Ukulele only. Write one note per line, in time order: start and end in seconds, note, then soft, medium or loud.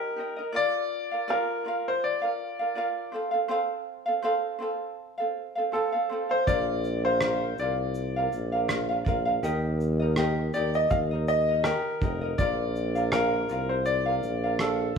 0.00 0.16 D#4 medium
0.00 0.15 G4 medium
0.00 0.16 A#4 medium
0.00 0.18 D#5 medium
0.16 0.38 D#4 medium
0.16 0.37 G4 soft
0.16 0.37 A#4 soft
0.16 0.35 D#5 soft
0.37 0.53 D#4 soft
0.37 0.53 A#4 soft
0.37 0.54 D#5 soft
0.52 1.12 F4 medium
0.52 1.12 A#4 medium
0.52 1.11 D5 medium
0.52 1.10 F5 medium
1.11 1.28 F4 soft
1.11 1.29 A#4 soft
1.11 1.28 F5 soft
1.28 1.65 F4 medium
1.28 1.66 A#4 medium
1.28 1.63 D5 medium
1.28 1.67 F5 medium
1.65 2.23 F4 medium
1.65 2.22 A#4 medium
1.65 2.23 D5 soft
1.65 2.20 F5 medium
2.22 2.61 F4 soft
2.22 2.60 A#4 soft
2.22 2.58 F5 soft
2.59 2.75 F4 soft
2.59 2.76 A#4 soft
2.59 2.76 F5 soft
2.75 3.13 F4 medium
2.75 3.14 A#4 medium
2.75 3.11 D5 medium
2.75 3.14 F5 medium
3.12 3.33 C4 medium
3.12 3.32 A4 medium
3.12 3.33 C5 soft
3.12 3.30 F5 medium
3.31 3.48 C4 soft
3.31 3.49 A4 soft
3.31 3.49 F5 soft
3.48 4.08 C4 medium
3.48 4.06 A4 medium
3.48 4.07 C5 medium
3.48 4.04 F5 medium
4.06 4.22 C4 soft
4.06 4.23 A4 soft
4.06 4.24 F5 medium
4.22 4.59 C4 medium
4.22 4.60 A4 medium
4.22 4.57 C5 medium
4.22 4.61 F5 medium
4.59 5.18 C4 medium
4.59 5.18 A4 medium
4.59 5.18 C5 soft
4.59 5.16 F5 medium
5.18 5.58 C4 soft
5.18 5.56 A4 soft
5.18 5.54 F5 medium
5.55 5.72 C4 soft
5.55 5.73 A4 soft
5.55 5.73 F5 soft
5.72 5.94 C4 medium
5.72 5.93 A4 medium
5.72 5.93 C5 medium
5.72 5.91 F5 medium
5.92 6.10 C4 soft
5.92 6.11 A4 soft
5.92 6.10 F5 soft
6.09 6.31 C4 medium
6.09 6.30 A4 medium
6.09 6.30 C5 medium
6.09 6.28 F5 medium
6.29 6.47 C4 soft
6.29 6.48 A4 soft
6.29 6.47 F5 soft
6.47 7.05 F4 medium
6.47 7.05 A#4 medium
6.47 7.05 D5 medium
6.47 7.04 F5 medium
7.05 7.21 F4 soft
7.05 7.22 A#4 soft
7.05 7.21 F5 soft
7.21 7.59 F4 medium
7.21 7.59 A#4 medium
7.21 7.58 D5 medium
7.21 7.60 F5 medium
7.59 8.17 F4 medium
7.59 8.17 A#4 medium
7.59 8.16 D5 soft
7.59 8.15 F5 medium
8.16 8.55 F4 soft
8.16 8.53 A#4 soft
8.16 8.51 F5 soft
8.52 8.69 A#4 soft
8.52 8.69 F5 soft
8.56 8.68 F4 soft
8.68 8.90 F4 medium
8.68 8.89 A#4 medium
8.68 8.89 D5 medium
8.68 8.88 F5 medium
8.89 9.05 F4 soft
8.89 9.06 A#4 soft
8.89 9.06 F5 soft
9.05 9.27 F4 medium
9.05 9.26 A#4 medium
9.05 9.26 D5 medium
9.09 9.24 F5 medium
9.25 9.43 F4 soft
9.25 9.43 A#4 soft
9.25 9.43 F5 medium
9.43 10.01 D#4 medium
9.43 10.00 G4 medium
9.43 10.01 A#4 medium
9.43 9.98 D#5 medium
10.00 10.17 D#4 soft
10.00 10.18 A#4 medium
10.00 10.17 D#5 soft
10.17 10.54 D#4 medium
10.17 10.53 G4 medium
10.17 10.54 A#4 medium
10.17 10.55 D#5 medium
10.54 11.12 D#4 medium
10.54 11.11 G4 medium
10.54 11.12 A#4 medium
10.54 11.10 D#5 medium
11.11 11.50 D#4 soft
11.11 11.49 A#4 soft
11.11 11.48 D#5 soft
11.49 11.64 D#4 soft
11.49 11.65 A#4 soft
11.49 11.65 D#5 medium
11.65 12.02 D#4 medium
11.65 12.00 G4 medium
11.65 12.01 A#4 medium
11.65 12.03 D#5 medium
12.01 12.23 D#4 medium
12.01 12.22 G4 soft
12.01 12.22 A#4 medium
12.01 12.20 D#5 medium
12.21 12.39 D#4 soft
12.21 12.39 A#4 soft
12.21 12.38 D#5 soft
12.39 12.96 F4 medium
12.39 12.96 A#4 medium
12.39 12.96 D5 medium
12.39 12.94 F5 medium
12.95 13.12 F4 soft
12.95 13.13 A#4 soft
12.95 13.12 F5 soft
13.13 13.49 F4 medium
13.13 13.50 A#4 medium
13.13 13.48 D5 medium
13.13 13.51 F5 medium
13.49 14.07 F4 medium
13.49 14.07 A#4 medium
13.49 14.07 D5 medium
13.49 14.04 F5 medium
14.06 14.45 F4 soft
14.06 14.44 A#4 soft
14.06 14.42 F5 medium
14.44 14.60 F4 soft
14.44 14.61 A#4 soft
14.44 14.60 F5 soft
14.61 14.98 F4 medium
14.61 14.96 D5 medium
14.61 14.98 F5 medium